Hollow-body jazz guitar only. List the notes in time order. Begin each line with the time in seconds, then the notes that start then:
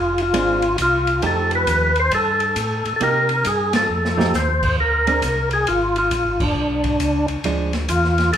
0.34 G#3 C4 D4
1.23 F3 A3 D#4 G4
3.01 A#3 D#4 G4
4.17 F3 A3 D#4 G4
5.07 G#3 C4 D4
7.45 F3 G#3 D4